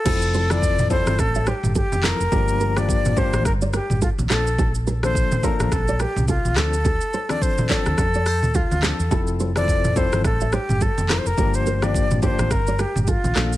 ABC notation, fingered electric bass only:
X:1
M:4/4
L:1/16
Q:"Swing 16ths" 1/4=106
K:F
V:1 name="Fingered electric bass" clef=bass
F,,,6- F,,, G,,, A,,,3 G,,,2 F,,,2 F,,, | G,,,6- G,,, A,,, G,,,3 G,,,2 B,,, B,,,2- | B,,,6- B,,, A,,, B,,,3 C,,2 B,,, D,,2- | D,,2 z4 z D,, F,,3 D,,2 D,,2 E,, |
F,,,6- F,,, G,,, A,,,3 G,,,2 F,,,2 F,,, | G,,,6- G,,, A,,, G,,,3 G,,,2 B,,, B,,,2 |]